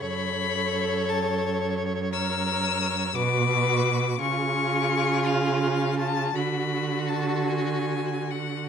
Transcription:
X:1
M:6/8
L:1/8
Q:3/8=57
K:F#m
V:1 name="Violin"
b3 a2 z | e'3 d'3 | c'3 ^e2 a | b2 a g2 f |]
V:2 name="Violin"
c6- | c3 B3 | G6 | F6 |]
V:3 name="Viola"
A6 | ^A3 F3 | ^E6 | F6 |]
V:4 name="Cello" clef=bass
F,,6- | F,,3 B,,3 | C,6 | D,6 |]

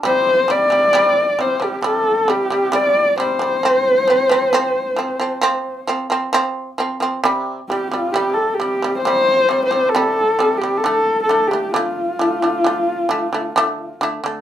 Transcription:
X:1
M:4/4
L:1/16
Q:1/4=67
K:none
V:1 name="Horsehead fiddle"
c2 d4 c G A2 G2 d2 c2- | c8- c2 z6 | z2 G F G A G2 c3 c A3 G | A2 A G F8- F2 z2 |]
V:2 name="Shamisen" clef=bass
[C,G,]2 [C,G,] [C,G,] [C,G,]2 [C,G,] [C,G,] [C,G,]2 [C,G,] [C,G,] [C,G,]2 [C,G,] [C,G,] | [F,C]2 [F,C] [F,C] [F,C]2 [F,C] [F,C] [F,C]2 [F,C] [F,C] [F,C]2 [F,C] [F,C] | [C,G,]2 [C,G,] [C,G,] [C,G,]2 [C,G,] [C,G,] [C,G,]2 [C,G,] [C,G,] [C,G,]2 [C,G,] [C,G,] | [D,A,]2 [D,A,] [D,A,] [D,A,]2 [D,A,] [D,A,] [D,A,]2 [D,A,] [D,A,] [D,A,]2 [D,A,] [D,A,] |]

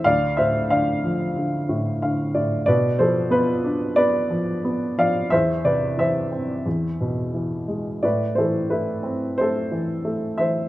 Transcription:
X:1
M:4/4
L:1/8
Q:1/4=90
K:Am
V:1 name="Upright piano"
[df] [ce] [df]4- [df] z | [Bd] [Ac] [FB]2 [Bd]3 [df] | [ce] [Bd] [ce]4- [ce] z | [Bd] [Ac] [EB]2 [Ac]3 [ce] |]
V:2 name="Upright piano" clef=bass
D,, A,, D, F, D, A,, [D,f] [A,,d] | B,, F, B, D B, F, B, F, | E,, C, E, C E,, B,, E, ^G, | A,, E, A, C A, E, A, E, |]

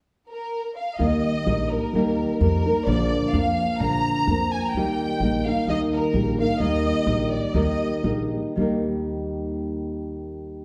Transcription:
X:1
M:2/4
L:1/16
Q:"Swing" 1/4=127
K:Eb
V:1 name="Violin section"
z2 B4 f2 | e6 B2- | B4 B4 | d4 f4 |
b6 a b | g6 f2 | e2 B4 f2 | e6 d2 |
e4 z4 | z8 | z8 |]
V:2 name="Nylon-string guitar"
z8 | [E,G,B,EB]4 [G,B,EB]4 | [E,G,B,EB]4 [G,B,EB]2 [B,EB]2 | [B,,D,F,B,DB]4 [F,B,DB]4 |
[B,,D,F,B,DB]4 [F,B,DB]4 | [E,G,B,EB]4 [G,B,EB]2 [B,EB]2 | [E,G,B,EB]4 [G,B,EB]2 [B,EB]2 | [E,G,B,EB]4 [G,B,EB]4 |
[E,G,B,EB]4 [G,B,EB]4 | [E,G,B,EB]8- | [E,G,B,EB]8 |]
V:3 name="Upright bass" clef=bass
z8 | E,,4 B,,,4 | E,,4 F,,4 | B,,,4 F,,4 |
B,,,4 F,,4 | E,,4 B,,,4 | E,,4 B,,,4 | E,,4 B,,,4 |
E,,4 B,,,4 | E,,8- | E,,8 |]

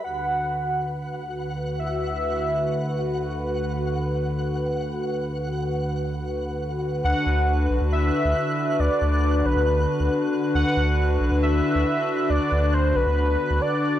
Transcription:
X:1
M:4/4
L:1/16
Q:1/4=137
K:Dmix
V:1 name="Synth texture"
f16- | f16- | f16- | f16 |
f'16- | f'16- | f'16- | f'16 |]
V:2 name="Soft synth lead"
f12 z4 | e12- e2 z2 | z16 | z16 |
f6 z2 e8 | d6 B8 z2 | f6 z2 e8 | d4 c2 B6 d4 |]
V:3 name="Analog synth pad"
[D,,D,FB]16- | [D,,D,FB]16- | [D,,D,FB]16- | [D,,D,FB]16 |
[D,DFB]16- | [D,DFB]16- | [D,DFB]16- | [D,DFB]16 |]
V:4 name="Analog synth bass" clef=bass
z16 | z16 | z16 | z16 |
D,, z D,,4 B,,, D,,3 z D,, z4 | D,, z D,,4 B,,, D,,3 z D,, z4 | D,, z D,,4 B,,, D,,3 z D,, z4 | D,, z D,,4 B,,, D,,3 z D,, z4 |]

